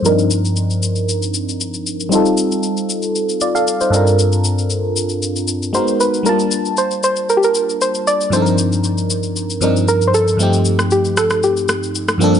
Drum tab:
SH |xxxxxxxxxxxxxxxx|xxxxxxxxxxxxxxxx|xxxxx-xxxxxxxxxx|xxxxxxxxxxxxxxxx|
SD |----------------|----------------|----------------|----------------|

SH |xxxxxxxxxxxxxxxx|xxxxxxxxxxxxxxxx|
SD |----------------|---r--rr--r--r--|